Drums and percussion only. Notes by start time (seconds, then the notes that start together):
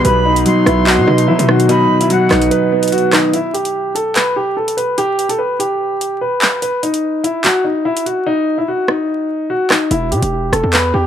0.05 closed hi-hat
0.36 closed hi-hat
0.46 closed hi-hat
0.66 cross-stick, closed hi-hat
0.87 clap
1.18 closed hi-hat
1.39 closed hi-hat
1.49 cross-stick
1.60 closed hi-hat
1.69 closed hi-hat
2.01 closed hi-hat
2.10 closed hi-hat
2.31 cross-stick, clap, closed hi-hat
2.42 closed hi-hat
2.51 closed hi-hat
2.83 closed hi-hat
2.88 closed hi-hat
2.92 closed hi-hat
2.98 closed hi-hat
3.13 cross-stick, clap, closed hi-hat
3.33 closed hi-hat
3.54 closed hi-hat
3.65 closed hi-hat
3.96 closed hi-hat
4.16 clap, closed hi-hat
4.68 closed hi-hat
4.78 closed hi-hat
4.98 closed hi-hat
5.19 closed hi-hat
5.29 closed hi-hat
5.60 closed hi-hat
6.01 closed hi-hat
6.42 clap, closed hi-hat
6.62 closed hi-hat
6.83 closed hi-hat
6.94 closed hi-hat
7.24 closed hi-hat
7.44 clap, closed hi-hat
7.97 closed hi-hat
8.06 closed hi-hat
8.88 cross-stick
9.70 cross-stick, clap
9.91 closed hi-hat
10.12 closed hi-hat
10.22 closed hi-hat
10.53 cross-stick, closed hi-hat
10.73 clap, closed hi-hat